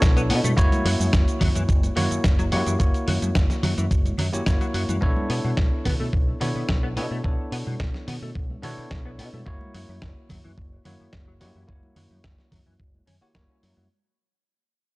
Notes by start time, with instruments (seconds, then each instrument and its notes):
Already playing: tine electric piano B3 D4 E4 A4 C#5
0.02 fingered electric bass B1, kick, snare, closed hi-hat, cabasa
0.17 clean electric guitar B3, closed hi-hat, cabasa
0.30 fingered electric bass B2, clean electric guitar B3, open hi-hat
0.44 fingered electric bass B2, clean electric guitar A3, closed hi-hat, high conga, cabasa
0.57 fingered electric bass F#1, tine electric piano A#3 E4 F#4 C#5, kick, closed hi-hat, cabasa
0.72 closed hi-hat, high conga, cabasa
0.85 fingered electric bass F#2, clean electric guitar F#3, open hi-hat
1.00 fingered electric bass F#2, clean electric guitar F#2, high conga, cabasa
1.13 fingered electric bass F#1, kick, snare, closed hi-hat, cabasa
1.28 closed hi-hat, cabasa
1.41 fingered electric bass F#2, clean electric guitar F#3, kick, open hi-hat, low conga
1.55 fingered electric bass F#2, clean electric guitar E3, closed hi-hat, muted conga, cabasa
1.69 fingered electric bass F#1, kick, closed hi-hat, cabasa
1.83 closed hi-hat, muted conga, cabasa
1.96 fingered electric bass F#2, clean electric guitar F#3, tine electric piano A#3 E4 F#4 C#5, open hi-hat, low conga
2.11 clean electric guitar F#2, muted fingered electric bass stroke, closed hi-hat, cabasa
2.24 fingered electric bass F#1, kick, snare, closed hi-hat, cabasa
2.39 clean electric guitar F#3, closed hi-hat, cabasa
2.52 fingered electric bass F#2, clean electric guitar F#3, tine electric piano A#3 E4 F#4 G4 C#5, open hi-hat, muted conga
2.66 fingered electric bass F#2, clean electric guitar E3, closed hi-hat, cabasa
2.79 fingered electric bass F#1, tine electric piano A#3 E4 F#4 C#5, kick, closed hi-hat, cabasa
2.94 closed hi-hat, cabasa
3.08 fingered electric bass F#2, clean electric guitar F#3, open hi-hat, low conga
3.22 fingered electric bass F#2, clean electric guitar F#2, closed hi-hat, high conga, cabasa
3.35 fingered electric bass F#1, kick, snare, closed hi-hat, cabasa
3.50 snare, closed hi-hat, cabasa
3.63 fingered electric bass F#2, clean electric guitar F#3, open hi-hat, low conga
3.78 fingered electric bass F#2, clean electric guitar E3, closed hi-hat, muted conga, cabasa
3.91 fingered electric bass F#1, kick, closed hi-hat, cabasa
4.05 closed hi-hat, high conga, cabasa
4.18 fingered electric bass F#2, clean electric guitar F#3, open hi-hat, low conga
4.33 clean electric guitar F#2, tine electric piano A#3 E4 F#4 G4 C#5, muted fingered electric bass stroke, closed hi-hat, cabasa
4.46 fingered electric bass F#1, tine electric piano A#3 E4 F#4 C#5, kick, snare, closed hi-hat, cabasa
4.61 clean electric guitar F#3, closed hi-hat, cabasa
4.74 fingered electric bass F#2, clean electric guitar F#3, open hi-hat
4.89 fingered electric bass F#2, clean electric guitar E3, closed hi-hat, high conga, cabasa
5.01 fingered electric bass B1, tine electric piano B3 D4 E4 A4 C#5, kick
5.17 high conga
5.30 fingered electric bass B2, clean electric guitar B3, open hi-hat
5.44 fingered electric bass B2, clean electric guitar B2, high conga
5.57 fingered electric bass B1, kick, snare
5.85 fingered electric bass B2, clean electric guitar B3, kick, open hi-hat, low conga
6.00 fingered electric bass B2, clean electric guitar A3
6.13 fingered electric bass B1, kick
6.41 fingered electric bass B2, tine electric piano B3 D4 E4 A4 C#5, clean electric guitar B3, open hi-hat, low conga
6.55 clean electric guitar B2, muted fingered electric bass stroke
6.69 fingered electric bass B1, kick, snare
6.83 clean electric guitar B3
6.96 fingered electric bass B2, tine electric piano B3 D4 E4 A4 C#5, clean electric guitar B3, open hi-hat
7.11 fingered electric bass B2, clean electric guitar A3
7.24 fingered electric bass B1, tine electric piano B3 D4 E4 A4 C#5, kick
7.52 fingered electric bass B2, clean electric guitar B3, open hi-hat
7.66 fingered electric bass B2, clean electric guitar B2, high conga
7.80 fingered electric bass B1, kick, snare
7.94 snare
8.08 fingered electric bass B2, clean electric guitar B3, open hi-hat, low conga
8.22 fingered electric bass B2, clean electric guitar A3
8.35 fingered electric bass B1, kick
8.50 high conga
8.62 fingered electric bass B2, tine electric piano B3 D4 E4 A4 C#5, clean electric guitar B3, open hi-hat, low conga
8.78 clean electric guitar B2, muted fingered electric bass stroke
8.91 fingered electric bass B1, kick, snare
9.06 clean electric guitar B3
9.19 fingered electric bass B2, clean electric guitar B3, open hi-hat
9.33 fingered electric bass B2, clean electric guitar A3, high conga
9.46 fingered electric bass F#1, tine electric piano A#3 E4 F#4 C#5, kick
9.61 high conga
9.74 fingered electric bass F#2, clean electric guitar F#3, open hi-hat
9.89 fingered electric bass F#2, clean electric guitar F#2, high conga
10.02 fingered electric bass F#1, kick, snare
10.29 fingered electric bass F#2, clean electric guitar F#3, kick, open hi-hat, low conga
10.44 fingered electric bass F#2, clean electric guitar E3
10.58 fingered electric bass F#1, kick
10.85 fingered electric bass F#2, clean electric guitar F#3, tine electric piano A#3 E4 F#4 C#5, open hi-hat, low conga
11.00 clean electric guitar F#2
11.13 fingered electric bass F#1, kick, snare
11.28 clean electric guitar F#3
11.41 fingered electric bass F#2, clean electric guitar F#3, tine electric piano A#3 E4 F#4 G4 C#5, open hi-hat
11.55 fingered electric bass F#2, clean electric guitar E3
11.67 fingered electric bass F#1, tine electric piano A#3 E4 F#4 C#5, kick
11.83 high conga
11.96 fingered electric bass F#2, clean electric guitar F#3, open hi-hat, low conga
12.11 fingered electric bass F#2, clean electric guitar F#2, high conga
12.24 fingered electric bass F#1, kick, snare
12.39 snare
12.52 fingered electric bass F#2, clean electric guitar F#3, kick, open hi-hat, low conga
12.66 fingered electric bass F#2, clean electric guitar E3
12.80 fingered electric bass F#1, kick
12.94 high conga
13.07 fingered electric bass F#2, clean electric guitar C#4, open hi-hat, low conga
13.21 tine electric piano A#3 E4 F#4 G4 C#5, clean electric guitar F#4
13.35 fingered electric bass F#1, tine electric piano G3 A#3 E4 F#4 C#5, clean electric guitar A#3, kick, snare
13.50 clean electric guitar C#4
13.63 fingered electric bass F#2, clean electric guitar F#3, open hi-hat
13.77 fingered electric bass F#2, clean electric guitar F#3, high conga